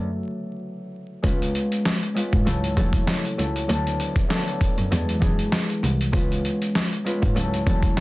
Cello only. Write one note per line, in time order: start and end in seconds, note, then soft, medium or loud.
1.24 1.50 C#2 loud
2.33 2.44 G#2 medium
2.47 2.73 C#2 loud
2.77 3.03 E2 medium
3.39 3.64 C#2 medium
3.69 3.95 D2 loud
4.78 4.89 F#2 medium
4.92 5.17 E2 loud
5.22 5.48 F#2 medium
5.83 6.09 C2 medium
6.14 6.40 C#2 loud
7.23 7.34 G#2 medium
7.36 7.62 C#2 loud
7.67 7.93 E2 loud